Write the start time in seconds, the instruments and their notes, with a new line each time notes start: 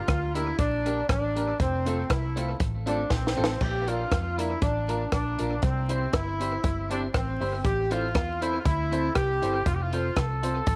Already playing: horn section F4
0.08 fingered electric bass D2, kick, cross-stick, closed hi-hat
0.34 clean electric guitar A#3 D4 G4 A#4, upright piano D4 G4 A#4, horn section E4, closed hi-hat
0.58 fingered electric bass A#1, horn section D4, muted clean electric guitar stroke, kick, closed hi-hat
0.85 clean electric guitar A#3 D4 G4 A#4, upright piano D4 G4 A#4, closed hi-hat
1.08 fingered electric bass A1, horn section D4, kick, cross-stick, closed hi-hat
1.35 clean electric guitar A#3 D4 G4 A#4, upright piano D4 G4 A#4, closed hi-hat
1.60 fingered electric bass F1, horn section C4, kick, closed hi-hat
1.85 clean electric guitar A3 C4 F4 A4, upright piano C4 F4 A4, closed hi-hat
2.10 fingered electric bass C2, horn section E4, kick, cross-stick, closed hi-hat
2.36 clean electric guitar A3 C4 F4 A4, upright piano C4 F4 A4, closed hi-hat
2.59 fingered electric bass A1, muted clean electric guitar stroke, kick, closed hi-hat
2.86 clean electric guitar A3 C4 F4 A4, upright piano C4 F4 A4, horn section D4, closed hi-hat
3.10 fingered electric bass A#1, horn section C4, kick, snare
3.27 snare
3.37 fingered electric bass A1, clean electric guitar A3 C4 F4 A4, upright piano C4 F4 A4
3.44 snare
3.60 fingered electric bass A#1, horn section G4, kick, crash
3.87 clean electric guitar A#3 D4 F4 A#4, upright piano D4 F4 A#4, horn section F4, closed hi-hat
4.11 fingered electric bass F2, kick, cross-stick, closed hi-hat
4.37 clean electric guitar A#3 D4 F4 A#4, upright piano D4 F4 A#4, horn section E4, closed hi-hat
4.62 fingered electric bass A1, horn section D4, kick, closed hi-hat
4.88 clean electric guitar A#3 D4 F4 A#4, upright piano D4 F4 A#4, closed hi-hat
5.12 fingered electric bass A#1, horn section D4, kick, cross-stick, closed hi-hat
5.38 fingered electric bass A#1, clean electric guitar A#3 D4 F4 A#4, upright piano D4 F4 A#4, closed hi-hat
5.62 fingered electric bass C2, horn section C4, kick, closed hi-hat
5.89 clean electric guitar C4 E4 G4 C5, upright piano E4 G4 C5, closed hi-hat
6.13 fingered electric bass G1, horn section E4, kick, cross-stick, closed hi-hat
6.40 clean electric guitar C4 E4 G4 C5, upright piano E4 G4 C5, closed hi-hat
6.63 fingered electric bass G1, muted clean electric guitar stroke, kick, closed hi-hat
6.90 clean electric guitar C4 E4 G4 C5, horn section D4, upright piano E4 G4 C5, closed hi-hat
7.13 fingered electric bass A1, horn section C4, kick, cross-stick, closed hi-hat
7.40 fingered electric bass G1, clean electric guitar C4 E4 G4 C5, upright piano E4 G4 C5, open hi-hat
7.64 fingered electric bass A1, horn section G4, kick, closed hi-hat
7.91 clean electric guitar C4 E4 A4 C5, upright piano E4 A4 C5, horn section F4, closed hi-hat
8.15 fingered electric bass E2, kick, cross-stick, closed hi-hat
8.41 clean electric guitar C4 E4 A4 C5, upright piano E4 A4 C5, horn section E4, closed hi-hat
8.59 horn section F4
8.65 fingered electric bass D2, horn section E4, kick, closed hi-hat
8.92 clean electric guitar C4 E4 A4 C5, upright piano E4 A4 C5, closed hi-hat
9.15 fingered electric bass C2, horn section G4, kick, cross-stick, closed hi-hat
9.42 fingered electric bass G1, clean electric guitar C4 E4 A4 C5, upright piano E4 A4 C5, closed hi-hat
9.66 fingered electric bass F1, horn section F4, kick, closed hi-hat
9.74 horn section G4
9.81 horn section F4
9.92 clean electric guitar C4 F4 A4 C5, upright piano F4 A4 C5, closed hi-hat
10.16 fingered electric bass C2, horn section A4, kick, cross-stick, closed hi-hat
10.42 clean electric guitar C4 F4 A4 C5, upright piano F4 A4 C5, closed hi-hat
10.66 fingered electric bass A1, muted clean electric guitar stroke, kick, closed hi-hat